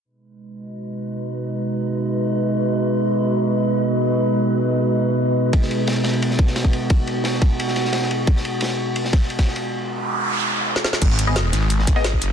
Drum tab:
CC |----------------|----------------|----------------|----------------|
RD |----------------|----------------|----------------|----------------|
HH |----------------|----------------|----------------|----------------|
SD |----------------|----------------|----------------|----------------|
BD |----------------|----------------|----------------|----------------|

CC |----------------|----------------|----------------|----------------|
RD |x-x-xxxxx-x-x-x-|x-x-x-x-x-x-x-x-|x-x-xx--x-x-xx-x|----------------|
HH |----------------|----------------|----------------|----------------|
SD |-o--o-o--o-oo---|----oo---ooooo--|-o--o----ooo-oo-|-------------ooo|
BD |o---------o--o--|o-----o---------|o---------o--o--|----------------|

CC |x---------------|
RD |x-x-xxxxx-x-x-x-|
HH |x-x-x-x-x-x-x-x-|
SD |-o--o-o--o-oo---|
BD |o---------o--o--|